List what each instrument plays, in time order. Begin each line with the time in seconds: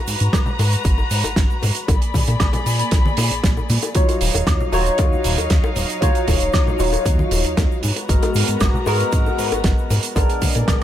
Already playing: string section G#3 F#4 B4 A#5
0.07 analog synth bass G#2, open hi-hat, shaker
0.20 analog synth bass G#2, closed hi-hat, shaker
0.33 analog synth bass G#1, kick, snare, closed hi-hat, high bongo, high woodblock, shaker
0.46 low conga, shaker
0.59 analog synth bass G#2, open hi-hat, high bongo, shaker
0.72 closed hi-hat, shaker
0.84 analog synth bass G#1, kick, closed hi-hat, shaker
0.98 high bongo, shaker
1.11 analog synth bass G#2, open hi-hat, shaker
1.24 analog synth bass G#1, closed hi-hat, high bongo, shaker
1.36 analog synth bass G#1, kick, snare, closed hi-hat, shaker
1.50 shaker
1.62 analog synth bass G#2, open hi-hat, high bongo, low conga, shaker
1.75 closed hi-hat, shaker
1.88 analog synth bass A#1, string section A#3 G#4 D5 B5, kick, closed hi-hat, high bongo, shaker
2.02 closed hi-hat, shaker
2.14 analog synth bass A#2, kick, open hi-hat, high conga, shaker
2.27 analog synth bass A#2, closed hi-hat, high bongo, shaker
2.40 analog synth bass A#1, kick, snare, closed hi-hat, high conga, high woodblock, shaker
2.53 closed hi-hat, high bongo, low conga, shaker
2.66 analog synth bass A#2, open hi-hat, shaker
2.79 closed hi-hat, shaker
2.91 analog synth bass A#1, kick, snare, closed hi-hat, high bongo, shaker
3.05 high conga, shaker
3.17 analog synth bass A#2, open hi-hat, high bongo, shaker
3.31 analog synth bass A#1, closed hi-hat, shaker
3.44 analog synth bass A#1, kick, snare, closed hi-hat, shaker
3.57 high bongo, shaker
3.70 analog synth bass A#2, open hi-hat, low conga, shaker
3.82 closed hi-hat, high bongo, shaker
3.95 analog synth bass D#2, tine electric piano F#3 D#4 F4 C#5, string section D#4 C#5 F5, kick, closed hi-hat, shaker
4.09 closed hi-hat, high bongo, shaker
4.21 analog synth bass D#1, open hi-hat, shaker
4.35 analog synth bass D#1, closed hi-hat, high bongo, shaker
4.47 analog synth bass D#2, kick, snare, closed hi-hat, high woodblock, shaker
4.60 low conga, shaker
4.72 analog synth bass D#1, tine electric piano F#3 D#4 F4 C#5, open hi-hat, high bongo, shaker
4.86 closed hi-hat, shaker
4.98 analog synth bass D#2, kick, closed hi-hat, high bongo, shaker
5.13 shaker
5.24 analog synth bass D#1, open hi-hat, shaker
5.37 analog synth bass D#2, closed hi-hat, high bongo, shaker
5.50 analog synth bass D#2, kick, snare, closed hi-hat, shaker
5.64 high bongo, shaker
5.76 analog synth bass D#1, open hi-hat, low conga, shaker
5.89 closed hi-hat, shaker
6.01 analog synth bass D#2, tine electric piano F#3 D#4 F4 C#5, kick, closed hi-hat, high bongo, shaker
6.15 closed hi-hat, shaker
6.28 analog synth bass D#1, kick, open hi-hat, high bongo, high conga, shaker
6.41 analog synth bass D#1, closed hi-hat, shaker
6.53 analog synth bass D#2, kick, snare, closed hi-hat, high conga, high woodblock, shaker
6.67 high bongo, low conga, shaker
6.79 analog synth bass D#1, tine electric piano F#3 D#4 F4 C#5, open hi-hat, shaker
6.93 closed hi-hat, high bongo, shaker
7.05 analog synth bass D#2, kick, closed hi-hat, shaker
7.19 high conga, shaker
7.31 analog synth bass D#1, open hi-hat, high bongo, shaker
7.44 analog synth bass D#2, closed hi-hat, shaker
7.57 analog synth bass D#2, kick, snare, closed hi-hat, high bongo, shaker
7.71 shaker
7.83 analog synth bass G#2, string section G#3 B3 F#4 A#5, open hi-hat, low conga, shaker
7.96 closed hi-hat, high bongo, shaker
8.09 analog synth bass G#1, tine electric piano G#3 B3 F#4 A#4, kick, closed hi-hat, shaker
8.23 closed hi-hat, high bongo, shaker
8.34 analog synth bass G#2, open hi-hat, shaker
8.48 analog synth bass G#2, closed hi-hat, shaker
8.60 analog synth bass G#1, kick, snare, closed hi-hat, high bongo, high woodblock, shaker
8.74 low conga, shaker
8.86 analog synth bass G#2, tine electric piano G#3 B3 F#4 A#4, open hi-hat, high bongo, shaker
9.00 closed hi-hat, shaker
9.12 analog synth bass G#1, kick, closed hi-hat, shaker
9.26 high bongo, shaker
9.38 analog synth bass G#2, open hi-hat, shaker
9.52 analog synth bass G#1, closed hi-hat, high bongo, shaker
9.64 analog synth bass G#1, kick, snare, closed hi-hat, shaker
9.78 shaker
9.90 analog synth bass G#2, open hi-hat, high bongo, low conga, shaker
10.03 closed hi-hat, shaker
10.16 analog synth bass A#1, tine electric piano G#3 B3 D4 A#4, string section G#4 D5, kick, closed hi-hat, high bongo, shaker
10.30 closed hi-hat, shaker
10.42 analog synth bass A#2, kick, open hi-hat, high conga, shaker
10.55 analog synth bass A#2, closed hi-hat, high bongo, shaker
10.68 analog synth bass A#1, kick, snare, closed hi-hat, high conga, high woodblock, shaker